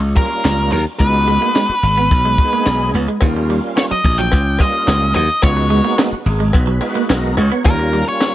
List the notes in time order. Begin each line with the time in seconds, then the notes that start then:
Already playing: C#2
0.16 F3 G3 A#3 C#4 F4 A#4, kick, open hi-hat
0.23 G3
0.44 C#2, snare, clap, closed hi-hat
0.72 D#2 F#3 A#4, open hi-hat
0.99 C#2 G#3 B3 D#4 F4 B4, kick, closed hi-hat
1.07 F#4
1.14 muted clean electric guitar stroke
1.27 G#3, open hi-hat
1.42 A#3
1.55 G#3, snare, clap, closed hi-hat
1.69 muted slap bass stroke
1.83 G#1, muted clean electric guitar stroke, open hi-hat
1.97 B3
2.11 B1, kick, closed hi-hat
2.25 G#3
2.38 G#3 B3 D#4 F#4, muted clean electric guitar stroke, kick, open hi-hat
2.45 G#4
2.53 A#3
2.66 B1, muted clean electric guitar stroke, snare, clap, closed hi-hat
2.94 C#2 B3, open hi-hat
3.08 G#3, closed hi-hat
3.21 D#2 D#3 G3 A#3 C#4 F4, kick, closed hi-hat, cowbell
3.37 muted clean electric guitar stroke
3.49 G3, open hi-hat
3.77 C#5, snare, clap, closed hi-hat, cowbell
3.91 F#3 D#5, muted slap bass stroke
4.04 A#1, muted clean electric guitar stroke, kick, open hi-hat
4.18 F#3 G5
4.32 C#2, kick, closed hi-hat, cowbell
4.59 G3 A#3 C#4 F4 D#5, kick, open hi-hat, cowbell
4.74 closed hi-hat
4.87 C#2, snare, clap, closed hi-hat, cowbell
5.15 D#2 F#3 D#5, open hi-hat, cowbell
5.29 closed hi-hat
5.42 C#2 G#3 B3 D#4 F4 C#5, kick, closed hi-hat, cowbell
5.50 F#4
5.57 muted clean electric guitar stroke
5.70 G#3, open hi-hat
5.85 A#3
5.98 A#3, snare, clap, closed hi-hat, cowbell
6.12 muted slap bass stroke
6.26 G#1 G#4, muted clean electric guitar stroke, open hi-hat
6.40 G#3
6.53 B1 B4, kick, closed hi-hat, cowbell
6.67 F#3
6.81 G#3 B3 D#4 F4, muted clean electric guitar stroke, open hi-hat, cowbell
6.89 F#4
6.95 A#3
7.09 B1 A#4, muted clean electric guitar stroke, snare, clap, closed hi-hat, cowbell
7.37 C#2 G#3 C#5, open hi-hat, cowbell
7.52 B3, closed hi-hat
7.65 D#2 D#3 G3 A#3 C#4 F4 A#4, kick, closed hi-hat, cowbell
7.79 muted clean electric guitar stroke
7.93 G3, open hi-hat
8.09 C#5
8.20 snare, clap, closed hi-hat, cowbell